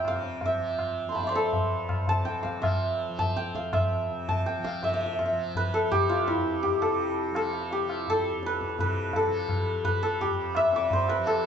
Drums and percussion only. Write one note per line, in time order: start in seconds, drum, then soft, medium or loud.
0.05 tabla na medium
0.05 tabla ge medium
0.23 tabla te medium
0.41 tabla tin loud
0.41 tabla ge medium
0.79 tabla na medium
0.79 tabla ge medium
1.16 tabla tin medium
1.16 tabla ge medium
1.53 tabla tin medium
1.53 tabla ge medium
1.89 tabla na medium
1.89 tabla ge medium
2.07 tabla tin medium
2.07 tabla ge medium
2.25 tabla ke medium
2.45 tabla ke medium
2.63 tabla na loud
2.63 tabla ge medium
3.19 tabla tin medium
3.19 tabla ge medium
3.36 tabla ke medium
3.55 tabla ke medium
3.73 tabla na medium
3.73 tabla ge medium
4.28 tabla tin medium
4.28 tabla ge medium
4.46 tabla ke medium
4.64 tabla ke medium
4.83 tabla tin loud
4.83 tabla ge medium
5.19 tabla na medium
5.19 tabla ge medium
5.55 tabla tin medium
5.55 tabla ge medium
5.92 tabla tin medium
5.92 tabla ge medium
6.28 tabla na medium
6.28 tabla ge medium
6.64 tabla tin medium
6.64 tabla ge medium
6.82 tabla na medium
6.99 tabla tin medium
7.35 tabla na medium
7.53 tabla na medium
7.71 tabla tin medium
7.89 tabla na medium
8.07 tabla tin medium
8.07 tabla ge medium
8.43 tabla te medium
8.52 tabla te medium
8.61 tabla ke medium
8.69 tabla te medium
8.79 tabla tin medium
8.79 tabla ge medium
9.13 tabla tin loud
9.13 tabla ge loud
9.49 tabla na medium
9.49 tabla ge medium
9.84 tabla tin medium
9.84 tabla ge medium
10.21 tabla tin medium
10.21 tabla ge medium
10.55 tabla na medium
10.55 tabla ge medium
10.73 tabla te medium
10.90 tabla tin medium
10.90 tabla ge medium
11.08 tabla na medium
11.26 tabla tin medium